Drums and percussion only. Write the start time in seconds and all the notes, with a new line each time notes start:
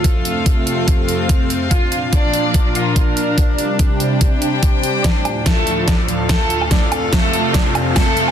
0.04 kick, closed hi-hat
0.25 closed hi-hat
0.46 kick, closed hi-hat
0.67 closed hi-hat
0.88 kick, closed hi-hat
1.09 closed hi-hat
1.29 kick, closed hi-hat
1.50 closed hi-hat
1.71 kick, closed hi-hat
1.92 closed hi-hat
2.13 kick, closed hi-hat
2.34 closed hi-hat
2.54 kick, closed hi-hat
2.75 closed hi-hat
2.96 kick, closed hi-hat
3.17 closed hi-hat
3.38 kick, closed hi-hat
3.58 closed hi-hat
3.79 kick, closed hi-hat
4.00 closed hi-hat
4.21 kick, closed hi-hat
4.42 closed hi-hat
4.63 kick, closed hi-hat
4.83 closed hi-hat
5.04 kick, snare, closed hi-hat
5.25 closed hi-hat, low woodblock
5.46 kick, snare, closed hi-hat
5.67 closed hi-hat
5.88 kick, snare, closed hi-hat
6.08 closed hi-hat
6.29 kick, snare, closed hi-hat
6.50 closed hi-hat
6.61 low woodblock
6.71 kick, snare, closed hi-hat
6.92 closed hi-hat, low woodblock
7.13 kick, snare, closed hi-hat
7.33 closed hi-hat
7.54 kick, snare, closed hi-hat
7.75 closed hi-hat, low woodblock
7.96 kick, snare, closed hi-hat, low woodblock
8.17 closed hi-hat
8.28 low woodblock